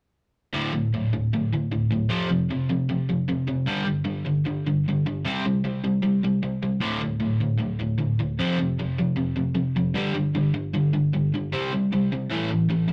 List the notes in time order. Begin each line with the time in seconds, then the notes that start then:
0.53 D2 A2 D3
0.73 D2 A2
0.94 D2 A2
1.13 D2 A2
1.33 D2 A2
1.53 D2 A2
1.71 D2 A2
1.91 D2 A2
2.09 F2 C3 F3
2.30 F2 C3
2.50 F2 C3
2.69 F2 C3
2.89 F2 C3
3.09 F2 C3
3.28 F2 C3
3.47 F2 C3
3.66 G2 D3 G3
3.85 G2 D3
4.05 G2 D3
4.25 G2 D3
4.45 G2 D3
4.66 G2 D3
4.88 G2 D3
5.06 G2 D3
5.25 C3 G3 C4
5.46 C3 G3
5.64 C3 G3
5.84 C3 G3
6.03 C3 G3
6.24 C3 G3
6.43 C3 G3
6.62 C3 G3
6.80 D2 A2 D3
7.01 D2 A2
7.20 D2 A2
7.41 D2 A2
7.59 D2 A2
7.80 D2 A2
7.99 D2 A2
8.19 D2 A2
8.39 F2 C3 F3
8.59 F2 C3
8.79 F2 C3
8.98 F2 C3
9.16 F2 C3
9.36 F2 C3
9.55 F2 C3
9.76 F2 C3
9.94 G2 D3 G3
10.14 G2 D3
10.35 G2 D3
10.54 G2 D3
10.73 G2 D3
10.93 G2 D3
11.13 G2 D3
11.34 G2 D3
11.53 C3 G3 C4
11.74 C3 G3
11.93 C3 G3
12.13 C3 G3
12.30 A2 E3 A3
12.51 A2 E3
12.70 A2 E3
12.89 A2 E3